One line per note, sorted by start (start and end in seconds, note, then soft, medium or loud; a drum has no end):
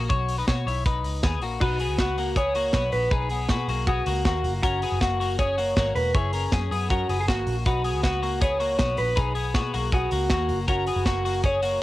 0.10 0.42 B1 medium
0.10 0.37 F#4 medium
0.10 0.36 C#5 medium
0.10 kick loud
0.10 closed hi-hat medium
0.28 open hi-hat medium
0.38 0.48 D#4 medium
0.38 0.48 B4 medium
0.47 0.64 B2 medium
0.47 0.67 F#4 medium
0.47 0.66 C#5 medium
0.47 kick loud
0.47 snare medium
0.47 closed hi-hat medium
0.66 1.05 B1 medium
0.66 0.86 E4 soft
0.66 0.85 C#5 medium
0.66 open hi-hat medium
0.86 1.22 D#4 medium
0.86 1.21 B4 medium
0.86 kick loud
0.86 closed hi-hat medium
1.04 1.20 C#2 medium
1.04 open hi-hat medium
1.23 1.41 D#2 medium
1.23 1.42 B3 soft
1.23 1.42 G#4 medium
1.23 kick loud
1.23 snare loud
1.23 closed hi-hat medium
1.41 1.58 A#1 medium
1.41 1.62 A#3 medium
1.41 1.61 F#4 medium
1.41 open hi-hat medium
1.61 1.89 B1 medium
1.61 1.81 D#4 medium
1.61 1.99 F#4 medium
1.61 1.80 B4 medium
1.61 kick loud
1.61 crash medium
1.79 1.99 B3 soft
1.79 1.99 G#4 medium
1.79 open hi-hat medium
1.89 2.70 C#2 medium
1.98 2.18 B3 medium
1.98 2.17 F#4 medium
1.98 2.34 F#4 medium
1.98 kick medium
1.98 snare medium
1.98 closed hi-hat medium
2.18 2.37 A#3 medium
2.18 2.36 F#4 medium
2.18 open hi-hat medium
2.36 2.56 B3 medium
2.36 2.55 G#4 medium
2.36 2.92 C#5 loud
2.36 kick loud
2.36 closed hi-hat medium
2.55 2.75 A#3 medium
2.55 2.73 F#4 medium
2.55 open hi-hat medium
2.73 2.90 B1 medium
2.73 3.10 B3 medium
2.73 3.10 F#4 medium
2.73 kick loud
2.73 snare loud
2.73 closed hi-hat medium
2.92 3.09 A#1 medium
2.92 3.12 B4 medium
2.92 open hi-hat medium
3.11 3.51 B1 medium
3.11 3.31 D#4 medium
3.11 3.87 G#4 medium
3.11 3.30 B4 medium
3.11 kick loud
3.11 closed hi-hat medium
3.30 3.50 B3 soft
3.30 3.50 G#4 medium
3.30 open hi-hat medium
3.49 3.66 B2 medium
3.49 3.69 B3 medium
3.49 3.68 F#4 medium
3.49 kick medium
3.49 snare medium
3.49 closed hi-hat medium
3.68 4.01 B1 medium
3.68 3.88 A#3 soft
3.68 3.88 F#4 medium
3.68 open hi-hat medium
3.87 4.07 B3 medium
3.87 4.23 F#4 medium
3.87 4.06 G#4 medium
3.87 kick loud
3.87 closed hi-hat medium
4.06 4.23 C#2 medium
4.06 4.26 A#3 medium
4.06 4.25 F#4 medium
4.06 open hi-hat medium
4.25 4.45 D#2 medium
4.25 4.62 A#3 medium
4.25 4.52 F#4 medium
4.25 4.62 F#4 medium
4.25 kick loud
4.25 snare loud
4.25 closed hi-hat medium
4.44 4.84 F#1 medium
4.44 open hi-hat medium
4.62 4.83 C#4 medium
4.62 5.00 F#4 medium
4.62 4.82 A#4 medium
4.62 kick loud
4.62 closed hi-hat medium
4.82 5.02 B3 medium
4.82 5.01 G#4 medium
4.82 open hi-hat medium
4.92 5.73 F#1 medium
5.01 5.20 A#3 medium
5.01 5.36 F#4 medium
5.01 5.19 F#4 medium
5.01 kick medium
5.01 snare medium
5.01 closed hi-hat medium
5.20 5.40 A#3 medium
5.20 5.39 F#4 medium
5.20 open hi-hat medium
5.39 5.58 C#4 medium
5.39 5.57 G#4 medium
5.39 5.92 C#5 medium
5.39 kick loud
5.39 closed hi-hat medium
5.58 5.76 A#3 medium
5.58 5.75 F#4 medium
5.58 open hi-hat medium
5.76 5.93 G#1 medium
5.76 6.13 A#3 medium
5.76 6.12 F#4 medium
5.76 kick loud
5.76 snare loud
5.76 closed hi-hat medium
5.95 6.11 E1 medium
5.95 6.15 B4 medium
5.95 open hi-hat medium
6.14 6.47 F#1 medium
6.14 6.34 E4 medium
6.14 6.90 G#4 medium
6.14 6.33 C#5 medium
6.14 kick loud
6.14 closed hi-hat medium
6.33 6.52 C#4 medium
6.33 6.53 A#4 medium
6.33 open hi-hat medium
6.52 6.68 F#2 medium
6.52 6.72 C#4 medium
6.52 6.70 G#4 medium
6.52 kick medium
6.52 snare medium
6.52 closed hi-hat medium
6.71 7.03 F#2 medium
6.71 6.91 B3 medium
6.71 6.90 G#4 medium
6.71 open hi-hat medium
6.90 7.10 C#4 medium
6.90 7.20 F#4 medium
6.90 7.09 A#4 medium
6.90 kick loud
6.90 closed hi-hat medium
7.09 7.28 F#1 medium
7.09 7.28 B3 medium
7.09 7.28 G#4 medium
7.09 open hi-hat medium
7.21 7.28 G#4 medium
7.28 7.44 G#1 medium
7.28 7.64 A#3 medium
7.28 7.64 F#4 medium
7.28 7.55 F#4 medium
7.28 kick medium
7.28 snare loud
7.28 closed hi-hat medium
7.47 7.63 A#1 medium
7.47 open hi-hat medium
7.66 7.94 B1 medium
7.66 7.85 D#4 medium
7.66 8.03 F#4 medium
7.66 7.84 B4 medium
7.66 kick loud
7.66 closed hi-hat medium
7.84 8.03 B3 medium
7.84 8.03 G#4 medium
7.84 open hi-hat medium
7.94 8.75 C#2 medium
8.03 8.23 B3 medium
8.03 8.21 F#4 medium
8.03 8.39 F#4 medium
8.03 kick medium
8.03 snare medium
8.03 closed hi-hat medium
8.23 8.42 A#3 medium
8.23 8.41 F#4 medium
8.23 open hi-hat medium
8.41 8.61 B3 medium
8.41 8.60 G#4 medium
8.41 8.98 C#5 medium
8.41 kick loud
8.41 closed hi-hat medium
8.60 8.79 A#3 medium
8.60 8.77 F#4 medium
8.60 open hi-hat medium
8.78 8.95 B1 medium
8.78 9.15 B3 soft
8.78 9.14 F#4 medium
8.78 kick loud
8.78 snare loud
8.78 closed hi-hat medium
8.97 9.14 A#1 medium
8.97 9.17 B4 medium
8.97 open hi-hat medium
9.16 9.56 B1 medium
9.16 9.36 D#4 medium
9.16 9.94 G#4 medium
9.16 9.35 B4 medium
9.16 kick loud
9.16 closed hi-hat medium
9.35 9.54 B3 medium
9.35 9.54 G#4 medium
9.35 open hi-hat medium
9.54 9.71 B2 medium
9.54 9.74 B3 medium
9.54 9.73 F#4 medium
9.54 kick medium
9.54 snare medium
9.54 closed hi-hat medium
9.74 10.06 B1 medium
9.74 9.93 A#3 medium
9.74 9.93 F#4 medium
9.74 open hi-hat medium
9.92 10.12 B3 medium
9.92 10.29 F#4 medium
9.92 10.12 G#4 medium
9.92 kick loud
9.92 closed hi-hat medium
10.11 10.28 C#2 medium
10.11 10.31 A#3 medium
10.11 10.30 F#4 medium
10.11 open hi-hat medium
10.30 10.50 D#2 medium
10.30 10.67 A#3 medium
10.30 10.66 F#4 medium
10.30 10.57 F#4 medium
10.30 kick medium
10.30 snare loud
10.30 closed hi-hat medium
10.49 10.89 F#1 medium
10.49 open hi-hat medium
10.68 10.88 C#4 medium
10.68 11.05 F#4 medium
10.68 10.87 A#4 medium
10.68 kick loud
10.68 closed hi-hat medium
10.86 11.07 B3 medium
10.86 11.06 G#4 medium
10.86 open hi-hat medium
10.96 11.77 F#1 medium
11.06 11.25 A#3 medium
11.06 11.24 F#4 medium
11.06 11.42 F#4 medium
11.06 kick medium
11.06 snare medium
11.06 closed hi-hat medium
11.25 11.44 A#3 soft
11.25 11.43 F#4 medium
11.25 open hi-hat medium
11.44 11.63 C#4 medium
11.44 11.62 G#4 medium
11.44 11.83 C#5 medium
11.44 kick loud
11.44 closed hi-hat medium
11.62 11.81 A#3 soft
11.62 11.81 F#4 medium
11.62 open hi-hat medium